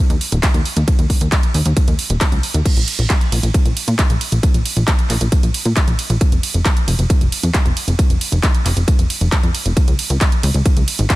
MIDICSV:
0, 0, Header, 1, 3, 480
1, 0, Start_track
1, 0, Tempo, 444444
1, 947, Time_signature, 4, 2, 24, 8
1, 12050, End_track
2, 0, Start_track
2, 0, Title_t, "Analog synth bass"
2, 0, Program_c, 0, 38
2, 106, Note_on_c, 0, 39, 80
2, 185, Note_off_c, 0, 39, 0
2, 348, Note_on_c, 0, 27, 83
2, 426, Note_off_c, 0, 27, 0
2, 588, Note_on_c, 0, 39, 79
2, 666, Note_off_c, 0, 39, 0
2, 827, Note_on_c, 0, 39, 84
2, 905, Note_off_c, 0, 39, 0
2, 1067, Note_on_c, 0, 39, 80
2, 1145, Note_off_c, 0, 39, 0
2, 1308, Note_on_c, 0, 39, 82
2, 1386, Note_off_c, 0, 39, 0
2, 1667, Note_on_c, 0, 39, 96
2, 1745, Note_off_c, 0, 39, 0
2, 1788, Note_on_c, 0, 39, 83
2, 1866, Note_off_c, 0, 39, 0
2, 2028, Note_on_c, 0, 39, 78
2, 2106, Note_off_c, 0, 39, 0
2, 2267, Note_on_c, 0, 27, 82
2, 2345, Note_off_c, 0, 27, 0
2, 2507, Note_on_c, 0, 37, 79
2, 2585, Note_off_c, 0, 37, 0
2, 2747, Note_on_c, 0, 39, 83
2, 2825, Note_off_c, 0, 39, 0
2, 2987, Note_on_c, 0, 34, 75
2, 3066, Note_off_c, 0, 34, 0
2, 3226, Note_on_c, 0, 34, 83
2, 3305, Note_off_c, 0, 34, 0
2, 3586, Note_on_c, 0, 34, 96
2, 3665, Note_off_c, 0, 34, 0
2, 3706, Note_on_c, 0, 34, 84
2, 3785, Note_off_c, 0, 34, 0
2, 3946, Note_on_c, 0, 34, 77
2, 4025, Note_off_c, 0, 34, 0
2, 4187, Note_on_c, 0, 46, 84
2, 4265, Note_off_c, 0, 46, 0
2, 4427, Note_on_c, 0, 34, 80
2, 4505, Note_off_c, 0, 34, 0
2, 4667, Note_on_c, 0, 34, 84
2, 4745, Note_off_c, 0, 34, 0
2, 4907, Note_on_c, 0, 34, 76
2, 4985, Note_off_c, 0, 34, 0
2, 5146, Note_on_c, 0, 34, 83
2, 5225, Note_off_c, 0, 34, 0
2, 5507, Note_on_c, 0, 34, 97
2, 5585, Note_off_c, 0, 34, 0
2, 5626, Note_on_c, 0, 34, 83
2, 5705, Note_off_c, 0, 34, 0
2, 5867, Note_on_c, 0, 34, 78
2, 5945, Note_off_c, 0, 34, 0
2, 6107, Note_on_c, 0, 46, 83
2, 6185, Note_off_c, 0, 46, 0
2, 6346, Note_on_c, 0, 34, 78
2, 6425, Note_off_c, 0, 34, 0
2, 6586, Note_on_c, 0, 34, 84
2, 6665, Note_off_c, 0, 34, 0
2, 6825, Note_on_c, 0, 29, 80
2, 6905, Note_off_c, 0, 29, 0
2, 7067, Note_on_c, 0, 29, 84
2, 7145, Note_off_c, 0, 29, 0
2, 7426, Note_on_c, 0, 29, 97
2, 7505, Note_off_c, 0, 29, 0
2, 7547, Note_on_c, 0, 29, 83
2, 7625, Note_off_c, 0, 29, 0
2, 7788, Note_on_c, 0, 29, 77
2, 7866, Note_off_c, 0, 29, 0
2, 8028, Note_on_c, 0, 41, 82
2, 8106, Note_off_c, 0, 41, 0
2, 8267, Note_on_c, 0, 29, 81
2, 8345, Note_off_c, 0, 29, 0
2, 8506, Note_on_c, 0, 29, 85
2, 8585, Note_off_c, 0, 29, 0
2, 8746, Note_on_c, 0, 29, 76
2, 8825, Note_off_c, 0, 29, 0
2, 8986, Note_on_c, 0, 29, 87
2, 9065, Note_off_c, 0, 29, 0
2, 9346, Note_on_c, 0, 29, 94
2, 9425, Note_off_c, 0, 29, 0
2, 9467, Note_on_c, 0, 29, 81
2, 9545, Note_off_c, 0, 29, 0
2, 9707, Note_on_c, 0, 29, 77
2, 9785, Note_off_c, 0, 29, 0
2, 9948, Note_on_c, 0, 29, 82
2, 10026, Note_off_c, 0, 29, 0
2, 10188, Note_on_c, 0, 41, 80
2, 10266, Note_off_c, 0, 41, 0
2, 10428, Note_on_c, 0, 29, 81
2, 10506, Note_off_c, 0, 29, 0
2, 10668, Note_on_c, 0, 37, 78
2, 10746, Note_off_c, 0, 37, 0
2, 10908, Note_on_c, 0, 37, 83
2, 10986, Note_off_c, 0, 37, 0
2, 11268, Note_on_c, 0, 37, 98
2, 11346, Note_off_c, 0, 37, 0
2, 11389, Note_on_c, 0, 37, 80
2, 11466, Note_off_c, 0, 37, 0
2, 11628, Note_on_c, 0, 37, 79
2, 11706, Note_off_c, 0, 37, 0
2, 11869, Note_on_c, 0, 32, 85
2, 11946, Note_off_c, 0, 32, 0
2, 12050, End_track
3, 0, Start_track
3, 0, Title_t, "Drums"
3, 108, Note_on_c, 9, 42, 58
3, 216, Note_off_c, 9, 42, 0
3, 227, Note_on_c, 9, 46, 100
3, 335, Note_off_c, 9, 46, 0
3, 347, Note_on_c, 9, 42, 55
3, 455, Note_off_c, 9, 42, 0
3, 467, Note_on_c, 9, 36, 116
3, 467, Note_on_c, 9, 39, 124
3, 467, Note_on_c, 9, 42, 101
3, 467, Note_on_c, 9, 51, 73
3, 575, Note_off_c, 9, 36, 0
3, 575, Note_off_c, 9, 39, 0
3, 575, Note_off_c, 9, 42, 0
3, 575, Note_off_c, 9, 51, 0
3, 587, Note_on_c, 9, 42, 55
3, 695, Note_off_c, 9, 42, 0
3, 707, Note_on_c, 9, 46, 92
3, 815, Note_off_c, 9, 46, 0
3, 827, Note_on_c, 9, 42, 55
3, 935, Note_off_c, 9, 42, 0
3, 947, Note_on_c, 9, 36, 124
3, 947, Note_on_c, 9, 42, 102
3, 947, Note_on_c, 9, 51, 73
3, 1055, Note_off_c, 9, 36, 0
3, 1055, Note_off_c, 9, 42, 0
3, 1055, Note_off_c, 9, 51, 0
3, 1067, Note_on_c, 9, 42, 57
3, 1175, Note_off_c, 9, 42, 0
3, 1187, Note_on_c, 9, 36, 60
3, 1187, Note_on_c, 9, 46, 101
3, 1295, Note_off_c, 9, 36, 0
3, 1295, Note_off_c, 9, 46, 0
3, 1307, Note_on_c, 9, 42, 59
3, 1415, Note_off_c, 9, 42, 0
3, 1427, Note_on_c, 9, 36, 116
3, 1427, Note_on_c, 9, 39, 126
3, 1427, Note_on_c, 9, 42, 101
3, 1427, Note_on_c, 9, 51, 70
3, 1535, Note_off_c, 9, 36, 0
3, 1535, Note_off_c, 9, 39, 0
3, 1535, Note_off_c, 9, 42, 0
3, 1535, Note_off_c, 9, 51, 0
3, 1547, Note_on_c, 9, 42, 55
3, 1655, Note_off_c, 9, 42, 0
3, 1667, Note_on_c, 9, 46, 95
3, 1775, Note_off_c, 9, 46, 0
3, 1788, Note_on_c, 9, 42, 58
3, 1896, Note_off_c, 9, 42, 0
3, 1907, Note_on_c, 9, 36, 121
3, 1907, Note_on_c, 9, 42, 101
3, 1907, Note_on_c, 9, 51, 71
3, 2015, Note_off_c, 9, 36, 0
3, 2015, Note_off_c, 9, 42, 0
3, 2015, Note_off_c, 9, 51, 0
3, 2027, Note_on_c, 9, 42, 59
3, 2135, Note_off_c, 9, 42, 0
3, 2147, Note_on_c, 9, 46, 103
3, 2255, Note_off_c, 9, 46, 0
3, 2267, Note_on_c, 9, 42, 57
3, 2375, Note_off_c, 9, 42, 0
3, 2387, Note_on_c, 9, 36, 113
3, 2387, Note_on_c, 9, 39, 126
3, 2387, Note_on_c, 9, 42, 99
3, 2387, Note_on_c, 9, 51, 75
3, 2495, Note_off_c, 9, 36, 0
3, 2495, Note_off_c, 9, 39, 0
3, 2495, Note_off_c, 9, 42, 0
3, 2495, Note_off_c, 9, 51, 0
3, 2508, Note_on_c, 9, 42, 56
3, 2616, Note_off_c, 9, 42, 0
3, 2628, Note_on_c, 9, 46, 95
3, 2736, Note_off_c, 9, 46, 0
3, 2748, Note_on_c, 9, 42, 55
3, 2856, Note_off_c, 9, 42, 0
3, 2867, Note_on_c, 9, 36, 126
3, 2868, Note_on_c, 9, 42, 99
3, 2868, Note_on_c, 9, 49, 109
3, 2868, Note_on_c, 9, 51, 59
3, 2975, Note_off_c, 9, 36, 0
3, 2976, Note_off_c, 9, 42, 0
3, 2976, Note_off_c, 9, 49, 0
3, 2976, Note_off_c, 9, 51, 0
3, 2989, Note_on_c, 9, 42, 56
3, 3097, Note_off_c, 9, 42, 0
3, 3108, Note_on_c, 9, 46, 109
3, 3108, Note_on_c, 9, 51, 81
3, 3216, Note_off_c, 9, 46, 0
3, 3216, Note_off_c, 9, 51, 0
3, 3228, Note_on_c, 9, 42, 58
3, 3336, Note_off_c, 9, 42, 0
3, 3347, Note_on_c, 9, 36, 122
3, 3348, Note_on_c, 9, 39, 127
3, 3348, Note_on_c, 9, 42, 100
3, 3348, Note_on_c, 9, 51, 58
3, 3455, Note_off_c, 9, 36, 0
3, 3456, Note_off_c, 9, 39, 0
3, 3456, Note_off_c, 9, 42, 0
3, 3456, Note_off_c, 9, 51, 0
3, 3469, Note_on_c, 9, 42, 55
3, 3577, Note_off_c, 9, 42, 0
3, 3589, Note_on_c, 9, 46, 99
3, 3589, Note_on_c, 9, 51, 81
3, 3697, Note_off_c, 9, 46, 0
3, 3697, Note_off_c, 9, 51, 0
3, 3708, Note_on_c, 9, 42, 58
3, 3816, Note_off_c, 9, 42, 0
3, 3827, Note_on_c, 9, 36, 121
3, 3828, Note_on_c, 9, 42, 101
3, 3828, Note_on_c, 9, 51, 59
3, 3935, Note_off_c, 9, 36, 0
3, 3936, Note_off_c, 9, 42, 0
3, 3936, Note_off_c, 9, 51, 0
3, 3948, Note_on_c, 9, 42, 59
3, 4056, Note_off_c, 9, 42, 0
3, 4068, Note_on_c, 9, 46, 105
3, 4068, Note_on_c, 9, 51, 81
3, 4176, Note_off_c, 9, 46, 0
3, 4176, Note_off_c, 9, 51, 0
3, 4188, Note_on_c, 9, 42, 58
3, 4296, Note_off_c, 9, 42, 0
3, 4307, Note_on_c, 9, 36, 118
3, 4308, Note_on_c, 9, 39, 127
3, 4308, Note_on_c, 9, 42, 102
3, 4308, Note_on_c, 9, 51, 60
3, 4415, Note_off_c, 9, 36, 0
3, 4416, Note_off_c, 9, 39, 0
3, 4416, Note_off_c, 9, 42, 0
3, 4416, Note_off_c, 9, 51, 0
3, 4427, Note_on_c, 9, 42, 56
3, 4535, Note_off_c, 9, 42, 0
3, 4547, Note_on_c, 9, 46, 93
3, 4547, Note_on_c, 9, 51, 80
3, 4655, Note_off_c, 9, 46, 0
3, 4655, Note_off_c, 9, 51, 0
3, 4667, Note_on_c, 9, 42, 54
3, 4775, Note_off_c, 9, 42, 0
3, 4786, Note_on_c, 9, 36, 127
3, 4787, Note_on_c, 9, 42, 100
3, 4787, Note_on_c, 9, 51, 55
3, 4894, Note_off_c, 9, 36, 0
3, 4895, Note_off_c, 9, 42, 0
3, 4895, Note_off_c, 9, 51, 0
3, 4907, Note_on_c, 9, 42, 57
3, 5015, Note_off_c, 9, 42, 0
3, 5027, Note_on_c, 9, 46, 109
3, 5027, Note_on_c, 9, 51, 76
3, 5135, Note_off_c, 9, 46, 0
3, 5135, Note_off_c, 9, 51, 0
3, 5147, Note_on_c, 9, 42, 57
3, 5255, Note_off_c, 9, 42, 0
3, 5266, Note_on_c, 9, 36, 127
3, 5267, Note_on_c, 9, 39, 127
3, 5267, Note_on_c, 9, 42, 97
3, 5267, Note_on_c, 9, 51, 56
3, 5374, Note_off_c, 9, 36, 0
3, 5375, Note_off_c, 9, 39, 0
3, 5375, Note_off_c, 9, 42, 0
3, 5375, Note_off_c, 9, 51, 0
3, 5387, Note_on_c, 9, 42, 54
3, 5495, Note_off_c, 9, 42, 0
3, 5507, Note_on_c, 9, 39, 38
3, 5507, Note_on_c, 9, 46, 99
3, 5507, Note_on_c, 9, 51, 77
3, 5615, Note_off_c, 9, 39, 0
3, 5615, Note_off_c, 9, 46, 0
3, 5615, Note_off_c, 9, 51, 0
3, 5627, Note_on_c, 9, 42, 55
3, 5735, Note_off_c, 9, 42, 0
3, 5746, Note_on_c, 9, 36, 127
3, 5747, Note_on_c, 9, 42, 96
3, 5747, Note_on_c, 9, 51, 57
3, 5854, Note_off_c, 9, 36, 0
3, 5855, Note_off_c, 9, 42, 0
3, 5855, Note_off_c, 9, 51, 0
3, 5867, Note_on_c, 9, 42, 57
3, 5975, Note_off_c, 9, 42, 0
3, 5987, Note_on_c, 9, 46, 111
3, 5987, Note_on_c, 9, 51, 77
3, 6095, Note_off_c, 9, 46, 0
3, 6095, Note_off_c, 9, 51, 0
3, 6106, Note_on_c, 9, 42, 56
3, 6214, Note_off_c, 9, 42, 0
3, 6226, Note_on_c, 9, 36, 127
3, 6227, Note_on_c, 9, 39, 127
3, 6227, Note_on_c, 9, 42, 96
3, 6227, Note_on_c, 9, 51, 55
3, 6334, Note_off_c, 9, 36, 0
3, 6335, Note_off_c, 9, 39, 0
3, 6335, Note_off_c, 9, 42, 0
3, 6335, Note_off_c, 9, 51, 0
3, 6347, Note_on_c, 9, 42, 54
3, 6455, Note_off_c, 9, 42, 0
3, 6467, Note_on_c, 9, 46, 101
3, 6467, Note_on_c, 9, 51, 80
3, 6575, Note_off_c, 9, 46, 0
3, 6575, Note_off_c, 9, 51, 0
3, 6587, Note_on_c, 9, 42, 53
3, 6695, Note_off_c, 9, 42, 0
3, 6707, Note_on_c, 9, 36, 127
3, 6708, Note_on_c, 9, 42, 94
3, 6708, Note_on_c, 9, 51, 55
3, 6815, Note_off_c, 9, 36, 0
3, 6816, Note_off_c, 9, 42, 0
3, 6816, Note_off_c, 9, 51, 0
3, 6828, Note_on_c, 9, 42, 54
3, 6936, Note_off_c, 9, 42, 0
3, 6948, Note_on_c, 9, 46, 111
3, 6948, Note_on_c, 9, 51, 73
3, 7056, Note_off_c, 9, 46, 0
3, 7056, Note_off_c, 9, 51, 0
3, 7068, Note_on_c, 9, 42, 55
3, 7176, Note_off_c, 9, 42, 0
3, 7187, Note_on_c, 9, 36, 123
3, 7188, Note_on_c, 9, 39, 126
3, 7188, Note_on_c, 9, 42, 93
3, 7188, Note_on_c, 9, 51, 56
3, 7295, Note_off_c, 9, 36, 0
3, 7296, Note_off_c, 9, 39, 0
3, 7296, Note_off_c, 9, 42, 0
3, 7296, Note_off_c, 9, 51, 0
3, 7309, Note_on_c, 9, 42, 52
3, 7417, Note_off_c, 9, 42, 0
3, 7428, Note_on_c, 9, 46, 100
3, 7428, Note_on_c, 9, 51, 75
3, 7536, Note_off_c, 9, 46, 0
3, 7536, Note_off_c, 9, 51, 0
3, 7549, Note_on_c, 9, 42, 52
3, 7657, Note_off_c, 9, 42, 0
3, 7667, Note_on_c, 9, 36, 127
3, 7669, Note_on_c, 9, 42, 93
3, 7669, Note_on_c, 9, 51, 53
3, 7775, Note_off_c, 9, 36, 0
3, 7777, Note_off_c, 9, 42, 0
3, 7777, Note_off_c, 9, 51, 0
3, 7789, Note_on_c, 9, 42, 54
3, 7897, Note_off_c, 9, 42, 0
3, 7909, Note_on_c, 9, 46, 113
3, 7909, Note_on_c, 9, 51, 76
3, 8017, Note_off_c, 9, 46, 0
3, 8017, Note_off_c, 9, 51, 0
3, 8029, Note_on_c, 9, 42, 53
3, 8137, Note_off_c, 9, 42, 0
3, 8147, Note_on_c, 9, 36, 126
3, 8149, Note_on_c, 9, 39, 124
3, 8149, Note_on_c, 9, 42, 95
3, 8149, Note_on_c, 9, 51, 55
3, 8255, Note_off_c, 9, 36, 0
3, 8257, Note_off_c, 9, 39, 0
3, 8257, Note_off_c, 9, 42, 0
3, 8257, Note_off_c, 9, 51, 0
3, 8269, Note_on_c, 9, 42, 52
3, 8377, Note_off_c, 9, 42, 0
3, 8389, Note_on_c, 9, 46, 99
3, 8389, Note_on_c, 9, 51, 77
3, 8497, Note_off_c, 9, 46, 0
3, 8497, Note_off_c, 9, 51, 0
3, 8509, Note_on_c, 9, 42, 50
3, 8617, Note_off_c, 9, 42, 0
3, 8627, Note_on_c, 9, 36, 127
3, 8629, Note_on_c, 9, 42, 91
3, 8629, Note_on_c, 9, 51, 57
3, 8735, Note_off_c, 9, 36, 0
3, 8737, Note_off_c, 9, 42, 0
3, 8737, Note_off_c, 9, 51, 0
3, 8749, Note_on_c, 9, 42, 50
3, 8857, Note_off_c, 9, 42, 0
3, 8869, Note_on_c, 9, 46, 112
3, 8869, Note_on_c, 9, 51, 76
3, 8977, Note_off_c, 9, 46, 0
3, 8977, Note_off_c, 9, 51, 0
3, 8989, Note_on_c, 9, 42, 55
3, 9097, Note_off_c, 9, 42, 0
3, 9107, Note_on_c, 9, 36, 125
3, 9109, Note_on_c, 9, 39, 123
3, 9109, Note_on_c, 9, 42, 90
3, 9109, Note_on_c, 9, 51, 55
3, 9215, Note_off_c, 9, 36, 0
3, 9217, Note_off_c, 9, 39, 0
3, 9217, Note_off_c, 9, 42, 0
3, 9217, Note_off_c, 9, 51, 0
3, 9229, Note_on_c, 9, 42, 50
3, 9337, Note_off_c, 9, 42, 0
3, 9349, Note_on_c, 9, 39, 39
3, 9349, Note_on_c, 9, 46, 99
3, 9349, Note_on_c, 9, 51, 79
3, 9457, Note_off_c, 9, 39, 0
3, 9457, Note_off_c, 9, 46, 0
3, 9457, Note_off_c, 9, 51, 0
3, 9469, Note_on_c, 9, 42, 51
3, 9577, Note_off_c, 9, 42, 0
3, 9587, Note_on_c, 9, 36, 127
3, 9589, Note_on_c, 9, 42, 91
3, 9589, Note_on_c, 9, 51, 55
3, 9695, Note_off_c, 9, 36, 0
3, 9697, Note_off_c, 9, 42, 0
3, 9697, Note_off_c, 9, 51, 0
3, 9709, Note_on_c, 9, 42, 53
3, 9817, Note_off_c, 9, 42, 0
3, 9829, Note_on_c, 9, 46, 107
3, 9829, Note_on_c, 9, 51, 77
3, 9937, Note_off_c, 9, 46, 0
3, 9937, Note_off_c, 9, 51, 0
3, 9949, Note_on_c, 9, 42, 52
3, 10057, Note_off_c, 9, 42, 0
3, 10068, Note_on_c, 9, 36, 127
3, 10070, Note_on_c, 9, 39, 124
3, 10070, Note_on_c, 9, 42, 95
3, 10070, Note_on_c, 9, 51, 56
3, 10176, Note_off_c, 9, 36, 0
3, 10178, Note_off_c, 9, 39, 0
3, 10178, Note_off_c, 9, 42, 0
3, 10178, Note_off_c, 9, 51, 0
3, 10190, Note_on_c, 9, 42, 51
3, 10298, Note_off_c, 9, 42, 0
3, 10309, Note_on_c, 9, 46, 100
3, 10309, Note_on_c, 9, 51, 79
3, 10417, Note_off_c, 9, 46, 0
3, 10417, Note_off_c, 9, 51, 0
3, 10429, Note_on_c, 9, 42, 52
3, 10537, Note_off_c, 9, 42, 0
3, 10548, Note_on_c, 9, 36, 127
3, 10549, Note_on_c, 9, 42, 90
3, 10549, Note_on_c, 9, 51, 59
3, 10656, Note_off_c, 9, 36, 0
3, 10657, Note_off_c, 9, 42, 0
3, 10657, Note_off_c, 9, 51, 0
3, 10668, Note_on_c, 9, 42, 53
3, 10776, Note_off_c, 9, 42, 0
3, 10788, Note_on_c, 9, 46, 110
3, 10788, Note_on_c, 9, 51, 77
3, 10896, Note_off_c, 9, 46, 0
3, 10896, Note_off_c, 9, 51, 0
3, 10909, Note_on_c, 9, 42, 53
3, 11017, Note_off_c, 9, 42, 0
3, 11028, Note_on_c, 9, 36, 117
3, 11028, Note_on_c, 9, 39, 117
3, 11028, Note_on_c, 9, 42, 92
3, 11028, Note_on_c, 9, 51, 57
3, 11136, Note_off_c, 9, 36, 0
3, 11136, Note_off_c, 9, 39, 0
3, 11136, Note_off_c, 9, 42, 0
3, 11136, Note_off_c, 9, 51, 0
3, 11148, Note_on_c, 9, 42, 52
3, 11256, Note_off_c, 9, 42, 0
3, 11268, Note_on_c, 9, 46, 93
3, 11268, Note_on_c, 9, 51, 80
3, 11376, Note_off_c, 9, 46, 0
3, 11376, Note_off_c, 9, 51, 0
3, 11388, Note_on_c, 9, 42, 53
3, 11496, Note_off_c, 9, 42, 0
3, 11508, Note_on_c, 9, 36, 124
3, 11508, Note_on_c, 9, 42, 87
3, 11508, Note_on_c, 9, 51, 59
3, 11616, Note_off_c, 9, 36, 0
3, 11616, Note_off_c, 9, 42, 0
3, 11616, Note_off_c, 9, 51, 0
3, 11628, Note_on_c, 9, 42, 54
3, 11736, Note_off_c, 9, 42, 0
3, 11748, Note_on_c, 9, 46, 111
3, 11748, Note_on_c, 9, 51, 82
3, 11856, Note_off_c, 9, 46, 0
3, 11856, Note_off_c, 9, 51, 0
3, 11868, Note_on_c, 9, 42, 54
3, 11976, Note_off_c, 9, 42, 0
3, 11988, Note_on_c, 9, 36, 119
3, 11988, Note_on_c, 9, 39, 117
3, 11988, Note_on_c, 9, 42, 94
3, 11988, Note_on_c, 9, 51, 58
3, 12050, Note_off_c, 9, 36, 0
3, 12050, Note_off_c, 9, 39, 0
3, 12050, Note_off_c, 9, 42, 0
3, 12050, Note_off_c, 9, 51, 0
3, 12050, End_track
0, 0, End_of_file